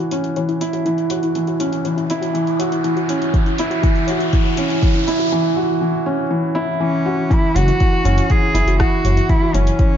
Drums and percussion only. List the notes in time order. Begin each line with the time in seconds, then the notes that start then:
0.11 closed hi-hat
0.24 closed hi-hat
0.36 closed hi-hat
0.49 closed hi-hat
0.61 closed hi-hat
0.73 closed hi-hat
0.86 closed hi-hat
0.98 closed hi-hat
1.10 closed hi-hat
1.23 closed hi-hat
1.35 closed hi-hat
1.47 closed hi-hat
1.60 closed hi-hat
1.73 closed hi-hat
1.85 closed hi-hat
1.98 closed hi-hat
2.10 closed hi-hat
2.23 closed hi-hat
2.35 closed hi-hat
2.47 closed hi-hat
2.60 closed hi-hat
2.72 closed hi-hat
2.84 closed hi-hat
2.97 closed hi-hat
3.09 closed hi-hat
3.22 closed hi-hat
3.34 kick, closed hi-hat
3.46 closed hi-hat
3.58 closed hi-hat
3.71 closed hi-hat
3.83 kick, closed hi-hat
3.96 closed hi-hat
4.08 closed hi-hat
4.21 closed hi-hat
4.33 kick, closed hi-hat
4.46 closed hi-hat
4.57 closed hi-hat
4.70 closed hi-hat
4.83 kick, closed hi-hat
4.96 closed hi-hat
5.08 closed hi-hat
5.20 closed hi-hat
7.31 kick, closed hi-hat
7.56 closed hi-hat
7.68 closed hi-hat
7.80 kick, closed hi-hat
8.05 closed hi-hat
8.18 closed hi-hat
8.30 kick, closed hi-hat
8.55 closed hi-hat
8.68 closed hi-hat
8.80 kick, cross-stick, closed hi-hat
9.05 closed hi-hat
9.17 closed hi-hat
9.29 kick, closed hi-hat
9.54 closed hi-hat
9.67 closed hi-hat
9.79 kick, closed hi-hat